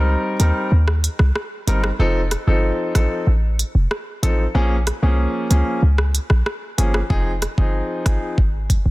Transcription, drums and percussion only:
0.40 closed hi-hat medium
0.88 cross-stick medium
1.04 closed hi-hat medium
1.19 cross-stick medium
1.36 cross-stick medium
1.68 closed hi-hat medium
1.84 cross-stick loud
2.31 cross-stick medium
2.31 closed hi-hat medium
2.95 cross-stick medium
2.95 closed hi-hat medium
3.59 closed hi-hat medium
3.91 cross-stick medium
4.23 closed hi-hat medium
4.87 cross-stick medium
4.87 closed hi-hat medium
5.51 closed hi-hat medium
5.98 cross-stick medium
6.15 closed hi-hat medium
6.30 cross-stick medium
6.46 cross-stick medium
6.78 closed hi-hat medium
6.94 cross-stick loud
7.10 kick loud
7.42 cross-stick medium
7.42 closed hi-hat medium
7.58 kick medium
8.06 kick medium
8.06 cross-stick medium
8.06 closed hi-hat medium
8.38 kick medium
8.70 kick loud
8.70 closed hi-hat medium

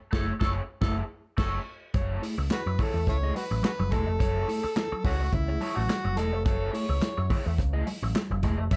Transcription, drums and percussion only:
0.13 kick loud
0.13 snare loud
0.41 kick loud
0.41 snare loud
0.82 kick loud
0.82 snare loud
1.38 kick loud
1.38 snare loud
1.38 crash medium
1.94 kick loud
1.94 closed hi-hat medium
1.94 muted conga medium
2.23 open hi-hat medium
2.50 snare loud
2.50 clap loud
2.50 closed hi-hat medium
2.50 high conga medium
2.79 kick loud
2.79 open hi-hat medium
2.79 muted conga medium
2.79 low conga medium
3.07 kick medium
3.07 closed hi-hat medium
3.07 muted conga soft
3.35 open hi-hat medium
3.35 muted conga medium
3.63 snare loud
3.63 clap medium
3.63 closed hi-hat loud
3.63 high conga medium
3.80 high conga medium
3.92 kick medium
3.92 closed hi-hat medium
4.20 kick loud
4.20 closed hi-hat medium
4.20 muted conga medium
4.49 open hi-hat medium
4.76 snare loud
4.76 clap loud
4.76 closed hi-hat medium
4.76 high conga medium
5.05 kick loud
5.05 open hi-hat medium
5.05 muted conga medium
5.33 kick medium
5.33 closed hi-hat medium
5.33 muted conga soft
5.33 low conga medium
5.61 open hi-hat medium
5.61 muted conga medium
5.89 snare loud
5.89 clap medium
5.89 closed hi-hat loud
5.89 high conga medium
6.05 high conga medium
6.17 closed hi-hat medium
6.46 kick loud
6.46 closed hi-hat loud
6.46 muted conga medium
6.75 open hi-hat medium
7.02 snare loud
7.02 clap medium
7.02 closed hi-hat loud
7.02 high conga medium
7.30 kick loud
7.30 open hi-hat medium
7.30 muted conga medium
7.30 low conga medium
7.58 kick medium
7.58 closed hi-hat medium
7.58 muted conga soft
7.87 open hi-hat medium
7.87 muted conga medium
8.15 snare loud
8.15 clap loud
8.15 closed hi-hat loud
8.15 high conga medium
8.31 high conga medium
8.43 kick medium
8.43 closed hi-hat medium
8.71 kick loud
8.71 closed hi-hat medium
8.71 muted conga medium

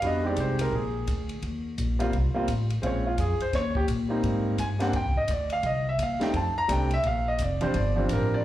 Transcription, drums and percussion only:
0.02 kick soft
0.02 ride medium
0.36 kick soft
0.36 hi-hat pedal medium
0.36 ride medium
0.59 ride medium
0.72 kick soft
1.07 kick soft
1.07 hi-hat pedal soft
1.07 ride medium
1.29 ride soft
1.42 kick soft
1.42 ride soft
1.78 kick soft
1.78 hi-hat pedal medium
1.78 ride medium
2.00 ride medium
2.13 kick soft
2.13 ride medium
2.48 kick soft
2.48 hi-hat pedal soft
2.48 ride medium
2.70 ride soft
2.83 kick soft
2.83 ride medium
3.18 kick soft
3.18 hi-hat pedal medium
3.18 ride medium
3.40 ride soft
3.53 kick soft
3.53 snare soft
3.53 ride medium
3.75 kick medium
3.88 kick soft
3.88 hi-hat pedal medium
3.88 ride medium
4.23 kick soft
4.23 ride medium
4.58 kick soft
4.58 hi-hat pedal soft
4.58 ride medium
4.80 snare soft
4.80 ride medium
4.93 kick soft
4.93 ride medium
5.28 kick soft
5.28 hi-hat pedal medium
5.28 ride medium
5.50 ride soft
5.63 kick soft
5.63 ride medium
5.99 kick soft
5.99 hi-hat pedal soft
5.99 ride medium
6.21 snare medium
6.21 ride medium
6.34 kick soft
6.34 ride medium
6.69 kick soft
6.69 hi-hat pedal medium
6.69 ride medium
6.91 ride medium
7.03 kick soft
7.03 ride medium
7.39 kick soft
7.39 hi-hat pedal medium
7.39 ride medium
7.61 ride soft
7.74 kick soft
7.74 ride medium
8.09 kick soft
8.09 hi-hat pedal medium
8.09 ride medium

